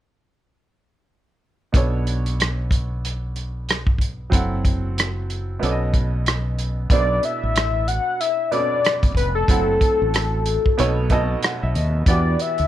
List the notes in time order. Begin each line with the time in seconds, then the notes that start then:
1.72 B1 B2 B3 D4 A4, kick, closed hi-hat
1.77 C#5
2.07 closed hi-hat
2.26 closed hi-hat
2.40 cross-stick, closed hi-hat
2.71 kick, closed hi-hat
3.05 closed hi-hat
3.36 closed hi-hat
3.69 cross-stick, closed hi-hat
3.87 kick
3.98 kick, closed hi-hat
4.30 F#1 F#3 C4 E4 A4, kick, closed hi-hat
4.35 F#5
4.65 kick, closed hi-hat
4.98 cross-stick, closed hi-hat
5.30 closed hi-hat
5.59 B1 B2 B3 C#4 A4, closed hi-hat
5.65 D5
5.71 D#5
5.94 kick, closed hi-hat
6.26 cross-stick, closed hi-hat
6.59 closed hi-hat
6.90 B1 B2 B3 D4 A4 C5 D5, kick, closed hi-hat
6.99 D5
7.23 E5, closed hi-hat
7.43 A1
7.56 cross-stick, closed hi-hat
7.88 F#5, closed hi-hat
8.20 E5, closed hi-hat
8.51 B2 B3 C#4 A4 D5, closed hi-hat
8.59 D4
8.85 cross-stick, closed hi-hat
9.03 A1, kick, closed hi-hat
9.15 F1 B4, kick, closed hi-hat
9.35 A4
9.48 F#1 F#3 C4 E4 A4 F#5, kick, closed hi-hat
9.81 kick, closed hi-hat
10.02 A1
10.14 cross-stick, closed hi-hat
10.46 closed hi-hat
10.66 kick
10.78 B1 B2 B3 D#4 A4 C#5, closed hi-hat
11.10 B2 B3 D#4 A4 D#5 A5, kick, closed hi-hat
11.43 F#5, cross-stick, closed hi-hat
11.63 B1 E5
11.75 D#2 D#5, closed hi-hat
12.06 E2 E3 B3 F#4 G4 D5, kick, closed hi-hat
12.39 E5, closed hi-hat
12.58 D2, closed hi-hat